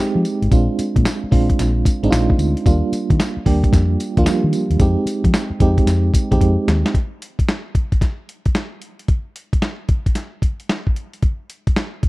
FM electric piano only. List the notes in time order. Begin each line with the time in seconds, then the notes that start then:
Already playing: G#3 C4 D#4 G4
0.51 G#3 C4 D4 F4
1.31 G#3 C4 D4 F4
2.03 G#3 C4 D4 D#4
2.10 F4
2.66 G3 A#3 D4 F4
3.45 G3 A#3 D4 G4
4.17 F3 A#3 D4 F4
4.24 G3
4.80 G#3 C4 D#4 G4
5.61 G#3 C4 D#4 G4
6.31 G#3 C4 D#4 G4